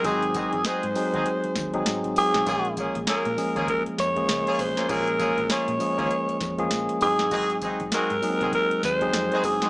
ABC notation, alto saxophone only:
X:1
M:4/4
L:1/8
Q:"Swing 16ths" 1/4=99
K:Bbm
V:1 name="Alto saxophone"
A2 c4 z A- | A z B2 B d2 c | B2 d4 z A- | A z B2 B c2 A |]